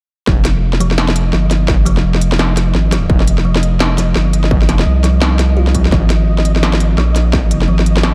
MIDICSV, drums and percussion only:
0, 0, Header, 1, 2, 480
1, 0, Start_track
1, 0, Key_signature, -4, "minor"
1, 0, Tempo, 352941
1, 375, Time_signature, 4, 2, 24, 8
1, 11072, End_track
2, 0, Start_track
2, 0, Title_t, "Drums"
2, 373, Note_on_c, 9, 36, 114
2, 373, Note_on_c, 9, 40, 51
2, 509, Note_off_c, 9, 36, 0
2, 509, Note_off_c, 9, 40, 0
2, 611, Note_on_c, 9, 40, 78
2, 611, Note_on_c, 9, 42, 70
2, 747, Note_off_c, 9, 40, 0
2, 747, Note_off_c, 9, 42, 0
2, 995, Note_on_c, 9, 40, 48
2, 1095, Note_on_c, 9, 42, 60
2, 1131, Note_off_c, 9, 40, 0
2, 1231, Note_off_c, 9, 42, 0
2, 1238, Note_on_c, 9, 40, 47
2, 1331, Note_on_c, 9, 38, 109
2, 1374, Note_off_c, 9, 40, 0
2, 1467, Note_off_c, 9, 38, 0
2, 1476, Note_on_c, 9, 40, 76
2, 1574, Note_on_c, 9, 42, 73
2, 1612, Note_off_c, 9, 40, 0
2, 1710, Note_off_c, 9, 42, 0
2, 1809, Note_on_c, 9, 40, 49
2, 1945, Note_off_c, 9, 40, 0
2, 2052, Note_on_c, 9, 40, 49
2, 2052, Note_on_c, 9, 42, 65
2, 2188, Note_off_c, 9, 40, 0
2, 2188, Note_off_c, 9, 42, 0
2, 2288, Note_on_c, 9, 40, 75
2, 2291, Note_on_c, 9, 36, 113
2, 2424, Note_off_c, 9, 40, 0
2, 2427, Note_off_c, 9, 36, 0
2, 2533, Note_on_c, 9, 42, 74
2, 2669, Note_off_c, 9, 42, 0
2, 2681, Note_on_c, 9, 40, 48
2, 2817, Note_off_c, 9, 40, 0
2, 2917, Note_on_c, 9, 40, 48
2, 3012, Note_on_c, 9, 42, 65
2, 3053, Note_off_c, 9, 40, 0
2, 3148, Note_off_c, 9, 42, 0
2, 3157, Note_on_c, 9, 40, 74
2, 3254, Note_on_c, 9, 38, 119
2, 3293, Note_off_c, 9, 40, 0
2, 3390, Note_off_c, 9, 38, 0
2, 3495, Note_on_c, 9, 40, 50
2, 3495, Note_on_c, 9, 42, 76
2, 3631, Note_off_c, 9, 40, 0
2, 3631, Note_off_c, 9, 42, 0
2, 3735, Note_on_c, 9, 40, 48
2, 3871, Note_off_c, 9, 40, 0
2, 3976, Note_on_c, 9, 40, 72
2, 3976, Note_on_c, 9, 42, 64
2, 4112, Note_off_c, 9, 40, 0
2, 4112, Note_off_c, 9, 42, 0
2, 4211, Note_on_c, 9, 36, 124
2, 4347, Note_off_c, 9, 36, 0
2, 4356, Note_on_c, 9, 40, 47
2, 4453, Note_on_c, 9, 42, 76
2, 4492, Note_off_c, 9, 40, 0
2, 4589, Note_off_c, 9, 42, 0
2, 4597, Note_on_c, 9, 40, 46
2, 4733, Note_off_c, 9, 40, 0
2, 4835, Note_on_c, 9, 40, 73
2, 4936, Note_on_c, 9, 42, 60
2, 4971, Note_off_c, 9, 40, 0
2, 5072, Note_off_c, 9, 42, 0
2, 5173, Note_on_c, 9, 38, 122
2, 5173, Note_on_c, 9, 40, 49
2, 5309, Note_off_c, 9, 38, 0
2, 5309, Note_off_c, 9, 40, 0
2, 5415, Note_on_c, 9, 40, 47
2, 5415, Note_on_c, 9, 42, 74
2, 5551, Note_off_c, 9, 40, 0
2, 5551, Note_off_c, 9, 42, 0
2, 5651, Note_on_c, 9, 40, 72
2, 5787, Note_off_c, 9, 40, 0
2, 5894, Note_on_c, 9, 42, 63
2, 6030, Note_off_c, 9, 42, 0
2, 6037, Note_on_c, 9, 40, 49
2, 6135, Note_on_c, 9, 36, 116
2, 6173, Note_off_c, 9, 40, 0
2, 6271, Note_off_c, 9, 36, 0
2, 6279, Note_on_c, 9, 40, 48
2, 6376, Note_on_c, 9, 38, 59
2, 6376, Note_on_c, 9, 42, 70
2, 6415, Note_off_c, 9, 40, 0
2, 6512, Note_off_c, 9, 38, 0
2, 6512, Note_off_c, 9, 42, 0
2, 6518, Note_on_c, 9, 40, 68
2, 6654, Note_off_c, 9, 40, 0
2, 6855, Note_on_c, 9, 40, 46
2, 6855, Note_on_c, 9, 42, 58
2, 6991, Note_off_c, 9, 40, 0
2, 6991, Note_off_c, 9, 42, 0
2, 7093, Note_on_c, 9, 38, 117
2, 7093, Note_on_c, 9, 40, 49
2, 7229, Note_off_c, 9, 38, 0
2, 7229, Note_off_c, 9, 40, 0
2, 7333, Note_on_c, 9, 40, 69
2, 7333, Note_on_c, 9, 42, 71
2, 7469, Note_off_c, 9, 40, 0
2, 7469, Note_off_c, 9, 42, 0
2, 7714, Note_on_c, 9, 40, 44
2, 7814, Note_on_c, 9, 42, 61
2, 7816, Note_on_c, 9, 36, 58
2, 7850, Note_off_c, 9, 40, 0
2, 7950, Note_off_c, 9, 42, 0
2, 7952, Note_off_c, 9, 36, 0
2, 7961, Note_on_c, 9, 40, 47
2, 8056, Note_on_c, 9, 36, 112
2, 8057, Note_off_c, 9, 40, 0
2, 8057, Note_on_c, 9, 40, 47
2, 8192, Note_off_c, 9, 36, 0
2, 8193, Note_off_c, 9, 40, 0
2, 8297, Note_on_c, 9, 40, 72
2, 8297, Note_on_c, 9, 42, 66
2, 8433, Note_off_c, 9, 40, 0
2, 8433, Note_off_c, 9, 42, 0
2, 8682, Note_on_c, 9, 40, 47
2, 8773, Note_on_c, 9, 42, 57
2, 8818, Note_off_c, 9, 40, 0
2, 8909, Note_off_c, 9, 42, 0
2, 8920, Note_on_c, 9, 40, 47
2, 9016, Note_on_c, 9, 38, 112
2, 9056, Note_off_c, 9, 40, 0
2, 9152, Note_off_c, 9, 38, 0
2, 9159, Note_on_c, 9, 40, 72
2, 9254, Note_on_c, 9, 42, 71
2, 9295, Note_off_c, 9, 40, 0
2, 9390, Note_off_c, 9, 42, 0
2, 9495, Note_on_c, 9, 40, 46
2, 9631, Note_off_c, 9, 40, 0
2, 9735, Note_on_c, 9, 40, 46
2, 9735, Note_on_c, 9, 42, 58
2, 9871, Note_off_c, 9, 40, 0
2, 9871, Note_off_c, 9, 42, 0
2, 9974, Note_on_c, 9, 36, 111
2, 9974, Note_on_c, 9, 40, 74
2, 10110, Note_off_c, 9, 36, 0
2, 10110, Note_off_c, 9, 40, 0
2, 10214, Note_on_c, 9, 42, 68
2, 10350, Note_off_c, 9, 42, 0
2, 10357, Note_on_c, 9, 40, 48
2, 10493, Note_off_c, 9, 40, 0
2, 10596, Note_on_c, 9, 40, 48
2, 10694, Note_on_c, 9, 42, 56
2, 10732, Note_off_c, 9, 40, 0
2, 10830, Note_off_c, 9, 42, 0
2, 10835, Note_on_c, 9, 40, 71
2, 10927, Note_on_c, 9, 38, 111
2, 10971, Note_off_c, 9, 40, 0
2, 11063, Note_off_c, 9, 38, 0
2, 11072, End_track
0, 0, End_of_file